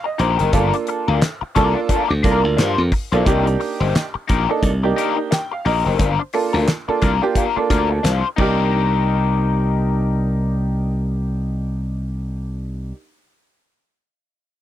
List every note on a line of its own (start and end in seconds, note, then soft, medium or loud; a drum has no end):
0.04 0.19 D#5 medium
0.04 muted overdriven electric guitar stroke medium
0.18 0.37 A#1 medium
0.18 0.36 D#4 medium
0.18 0.36 G4 medium
0.18 0.37 A#4 medium
0.18 0.39 C5 medium
0.18 closed hi-hat medium
0.39 0.52 F#1 medium
0.39 0.51 D#4 medium
0.39 0.51 G4 medium
0.39 0.51 A#4 medium
0.39 0.72 A#4 medium
0.39 closed hi-hat medium
0.53 0.71 G1 loud
0.53 1.19 A#3 medium
0.53 0.75 D4 medium
0.53 1.19 D4 medium
0.53 1.19 F4 medium
0.53 0.75 F4 medium
0.53 1.19 A4 loud
0.53 0.73 A#4 medium
0.53 kick loud
0.53 closed hi-hat medium
0.73 muted overdriven electric guitar stroke soft
0.73 closed hi-hat medium
0.87 muted overdriven electric guitar stroke soft
0.87 closed hi-hat medium
1.08 1.20 D2 medium
1.08 1.20 D4 medium
1.08 1.20 F4 medium
1.08 1.19 A#4 medium
1.22 muted overdriven electric guitar stroke soft
1.22 snare loud
1.22 clap loud
1.22 closed hi-hat loud
1.41 muted overdriven electric guitar stroke medium
1.41 muted slap bass stroke medium
1.55 1.73 C2 loud
1.55 2.00 A#3 loud
1.55 1.78 D4 medium
1.55 2.01 D4 medium
1.55 2.01 F4 loud
1.55 1.76 F4 medium
1.55 2.01 A4 loud
1.55 1.74 A#4 loud
1.55 kick medium
1.55 closed hi-hat medium
1.76 muted overdriven electric guitar stroke medium
1.89 2.11 D4 medium
1.89 2.09 F4 loud
1.89 2.08 A#4 loud
1.89 kick medium
1.89 closed hi-hat loud
2.09 2.22 D2 medium
2.09 muted overdriven electric guitar stroke soft
2.23 2.45 C2 medium
2.23 2.81 A#3 loud
2.23 2.40 D4 medium
2.23 2.81 D4 loud
2.23 2.41 F4 medium
2.23 2.81 F4 loud
2.23 2.32 A4 medium
2.23 2.41 A#4 medium
2.23 kick loud
2.23 closed hi-hat medium
2.31 2.84 A#4 loud
2.44 2.56 D2 medium
2.44 muted overdriven electric guitar stroke medium
2.57 2.76 G2 loud
2.57 2.79 D4 medium
2.57 2.79 F4 medium
2.57 2.80 C5 medium
2.57 snare loud
2.57 clap medium
2.57 closed hi-hat medium
2.78 2.90 F2 medium
2.92 muted overdriven electric guitar stroke soft
2.92 kick medium
2.92 open hi-hat medium
3.12 3.24 B1 medium
3.12 3.21 A#3 medium
3.12 3.22 D4 medium
3.12 3.24 D4 medium
3.12 3.24 F4 medium
3.12 3.22 F4 medium
3.12 3.22 A4 loud
3.12 3.24 C5 medium
3.12 closed hi-hat soft
3.25 3.55 C2 loud
3.25 4.03 A#3 loud
3.25 4.03 D4 medium
3.25 3.47 D#4 medium
3.25 4.04 D#4 medium
3.25 3.46 G4 medium
3.25 4.04 G4 loud
3.25 3.45 A#4 medium
3.25 kick loud
3.25 closed hi-hat medium
3.46 muted overdriven electric guitar stroke soft
3.46 closed hi-hat medium
3.60 muted overdriven electric guitar stroke soft
3.60 open hi-hat medium
3.80 3.92 G1 medium
3.80 3.93 D#4 medium
3.80 3.92 G4 medium
3.80 3.92 C5 medium
3.94 muted overdriven electric guitar stroke soft
3.94 snare loud
3.94 clap loud
3.94 closed hi-hat medium
4.14 muted overdriven electric guitar stroke medium
4.14 muted slap bass stroke medium
4.28 4.46 A#1 loud
4.28 4.49 D#4 loud
4.28 4.49 G4 loud
4.28 4.49 A#4 loud
4.28 kick medium
4.28 closed hi-hat medium
4.49 4.68 A#3 medium
4.49 4.69 D4 medium
4.49 4.69 D#4 medium
4.49 4.69 A4 loud
4.49 muted overdriven electric guitar stroke soft
4.63 4.91 C2 loud
4.63 kick medium
4.63 closed hi-hat medium
4.83 5.34 A#3 medium
4.83 5.35 D4 medium
4.83 5.35 D#4 medium
4.83 5.35 G4 medium
4.83 muted overdriven electric guitar stroke medium
4.96 5.18 D#4 medium
4.96 5.17 G4 loud
4.96 5.15 A#4 loud
4.96 closed hi-hat loud
5.17 muted overdriven electric guitar stroke soft
5.31 5.51 G5 medium
5.31 muted overdriven electric guitar stroke soft
5.31 snare loud
5.31 clap medium
5.31 closed hi-hat loud
5.52 5.65 F5 medium
5.52 muted overdriven electric guitar stroke soft
5.65 5.83 A#1 medium
5.65 5.82 D#4 medium
5.65 5.82 G4 medium
5.65 5.83 A#4 medium
5.65 5.85 D#5 medium
5.65 open hi-hat medium
5.85 5.97 F#1 medium
5.85 5.98 D#4 medium
5.85 5.97 G4 medium
5.85 5.97 A#4 medium
5.85 6.18 C5 medium
5.99 6.17 G1 loud
5.99 6.20 D4 medium
5.99 6.20 F4 medium
5.99 6.19 A#4 medium
5.99 kick loud
5.99 closed hi-hat loud
6.20 muted overdriven electric guitar stroke soft
6.33 6.66 A#3 medium
6.33 6.66 D4 medium
6.33 6.67 F4 medium
6.33 6.67 A4 loud
6.33 muted overdriven electric guitar stroke medium
6.33 open hi-hat medium
6.53 6.65 D2 medium
6.53 6.66 D4 medium
6.53 6.65 F4 medium
6.53 6.65 A#4 medium
6.67 muted overdriven electric guitar stroke soft
6.67 snare loud
6.67 clap medium
6.67 closed hi-hat medium
6.88 7.07 A#3 medium
6.88 7.07 D4 medium
6.88 7.07 F4 medium
6.88 7.08 A4 loud
6.88 muted slap bass stroke medium
6.88 muted overdriven electric guitar stroke medium
7.02 7.19 C2 medium
7.02 7.23 D4 medium
7.02 7.23 F4 medium
7.02 7.21 A#4 medium
7.02 kick medium
7.02 closed hi-hat medium
7.22 7.41 A#3 loud
7.22 7.41 D4 medium
7.22 7.42 F4 medium
7.22 7.42 G4 loud
7.22 muted overdriven electric guitar stroke soft
7.35 7.57 D4 medium
7.35 7.58 F4 loud
7.35 7.56 A#4 loud
7.35 kick medium
7.35 closed hi-hat loud
7.56 8.07 A#3 medium
7.56 8.08 D4 medium
7.56 8.08 F4 medium
7.56 8.08 A4 medium
7.56 muted slap bass stroke soft
7.56 muted overdriven electric guitar stroke soft
7.70 7.99 D2 loud
7.70 7.87 D4 medium
7.70 7.87 F4 medium
7.70 7.88 A#4 medium
7.70 kick loud
7.70 closed hi-hat loud
7.91 muted overdriven electric guitar stroke soft
8.03 8.21 C2 medium
8.03 8.25 D4 medium
8.03 8.26 F4 medium
8.03 8.26 C5 medium
8.03 snare loud
8.03 clap medium
8.03 closed hi-hat loud
8.36 12.91 C2 loud
8.36 12.90 A#3 medium
8.36 12.91 D4 medium
8.36 12.95 D#4 medium
8.36 12.92 D#4 medium
8.36 12.96 G4 medium
8.36 kick medium
8.36 crash medium
8.41 12.93 G4 loud
8.41 12.97 A#4 medium